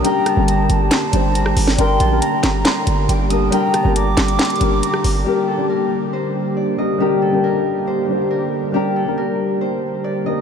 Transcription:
<<
  \new Staff \with { instrumentName = "Flute" } { \time 4/4 \key g \minor \tempo 4 = 138 bes''4 a''2. | c'''4 bes''2 g''8 a''8 | bes''4 d'''2. | r1 |
r1 | r1 | }
  \new Staff \with { instrumentName = "Harp" } { \time 4/4 \key g \minor g''8 a''8 bes''4 c'''4 bes''4 | g''8 a''8 bes''4 c'''4 d'''8 ees'''8 | g''8 a''8 bes''4 c'''4 bes''4 | g'8 a'8 bes'4 c''4 d''8 ees''8 |
g'8 a'8 bes'4 c''4 bes'4 | g'8 a'8 bes'4 c''4 d''8 ees''8 | }
  \new Staff \with { instrumentName = "Grand piano" } { \time 4/4 \key g \minor <g d' bes'>8. <g d' bes'>4. r16 <g d' c''>4~ <g d' c''>16 r16 | <g d' bes'>8. <g d' bes'>4.~ <g d' bes'>16 r4 <g d' bes'>8 | <g d' bes'>8. <g d' bes'>4. r16 <g d' bes'>4~ <g d' bes'>16 r16 | <g d' bes'>8. <g d' g'>4.~ <g d' g'>16 r4 <g d' bes'>8 |
<g d' bes'>8. <g d' bes'>4. r16 <g d' c''>4~ <g d' c''>16 r16 | <g d' bes'>8. <g d' bes'>4.~ <g d' bes'>16 r4 <g d' bes'>8 | }
  \new Staff \with { instrumentName = "Analog synth pad" } { \clef bass \time 4/4 \key g \minor << { g'1~ | g'1~ | g'1 | g'1~ |
g'1~ | g'1 | } \\ { <d g bes>1 | <d g bes>1~ | <d g bes>1 | <d g bes>1~ |
<d g bes>1~ | <d g bes>1 | } >> }
  \new Staff \with { instrumentName = "808-style bass" } { \clef bass \time 4/4 \key g \minor r8. g,,8. g,,8 r8 g,,4 g,,8 | g,,8 bes,,8 r8 g,,8 r8 g,,8 g,,4 | r8. g,,8. g,,8 r8 g,,8 r8 g,,8 | r1 |
r1 | r1 | }
  \new DrumStaff \with { instrumentName = "Drums" } \drummode { \time 4/4 hh8 <hh ss>8 hh8 hh8 <hc hh sn>8 hh8 hh16 ss16 hho16 sn16 | hh8 hh8 hh8 <hc hh sn>8 <hc hh sn>8 hh8 hh8 hh8 | hh8 <hh ss>8 hh8 <hc hh sn>16 hh16 <hc hh sn>32 hh32 hh32 hh32 hh8 hh16 ss16 hho8 | r4 r4 r4 r4 |
r4 r4 r4 r4 | r4 r4 r4 r4 | }
>>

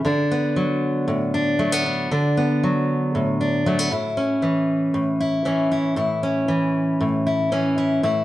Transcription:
\new Staff \with { instrumentName = "Steel-string acoustic guitar" } { \time 4/4 \key a \major \tempo 4 = 116 << { d'8 b2 d'8 a16 b16 d'8 | d'8 b2 d'8 a16 b16 e'8 | cis'2 e'8 cis'8 e'8 e'8 | cis'2 e'8 cis'8 e'8 e'8 | } \\ { d4 fis4 a,4 fis4 | d4 fis4 a,4 fis8 a,8~ | a,8 e4 a,4 e4 a,8~ | a,8 e4 a,4 e4 a,8 | } >> }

